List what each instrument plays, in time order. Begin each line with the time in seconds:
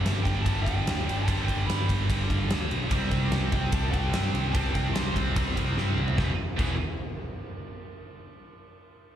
Already playing: distorted electric guitar G2 D3 G3
0.04 picked electric bass G1, snare, ride
0.24 picked electric bass G1, lead electric guitar G5, kick, ride
0.42 picked electric bass G1, distorted electric guitar G2, lead electric guitar A5, kick, ride
0.47 distorted electric guitar D3 G3
0.62 lead electric guitar G5
0.66 picked electric bass G1, kick, ride
0.86 picked electric bass D2, snare, ride
0.99 snare
1.07 picked electric bass G1, ride
1.24 distorted electric guitar G2, lead electric guitar A5, kick
1.28 picked electric bass G1, distorted electric guitar D3 G3, ride
1.45 picked electric bass G1, lead electric guitar G5, kick
1.49 ride
1.66 picked electric bass G1, lead electric guitar B5, ride
1.70 snare
1.89 picked electric bass G1, kick, ride
2.09 picked electric bass G1, distorted electric guitar G2 D3 G3, kick, ride
2.30 picked electric bass G1, kick, ride
2.50 picked electric bass D2, snare, ride
2.71 picked electric bass B1, ride
2.90 picked electric bass C2, distorted electric guitar C3 G3 C4, kick, ride
3.11 picked electric bass C2, kick, snare, ride
3.32 picked electric bass C2, snare, ride
3.52 picked electric bass C2, lead electric guitar G5, kick, ride
3.71 picked electric bass C2, distorted electric guitar C3 G3 C4, lead electric guitar A5, kick, ride
3.91 picked electric bass C2, overdriven electric guitar G3 C4, lead electric guitar G5, kick, ride
3.96 overdriven electric guitar C3
4.11 picked electric bass G2, overdriven electric guitar C3 G3 C4, snare, ride
4.32 picked electric bass C2, ride
4.53 picked electric bass C2, distorted electric guitar C3 G3 C4, lead electric guitar A5, kick, ride
4.73 picked electric bass C2, lead electric guitar G5, kick, snare, ride
4.94 picked electric bass C2, lead electric guitar C6, snare, ride
5.16 picked electric bass C2, kick, ride
5.35 picked electric bass C2, distorted electric guitar C3 G3 C4, kick, ride
5.56 picked electric bass C2, overdriven electric guitar C3 G3 C4, kick, ride
5.76 picked electric bass G2, overdriven electric guitar C3 G3 C4, snare
5.96 picked electric bass C2, mid tom
6.08 floor tom
6.17 picked electric bass E1, distorted electric guitar E2 B2 E3, kick, snare
6.57 picked electric bass E1, distorted electric guitar E2 B2 E3, kick, crash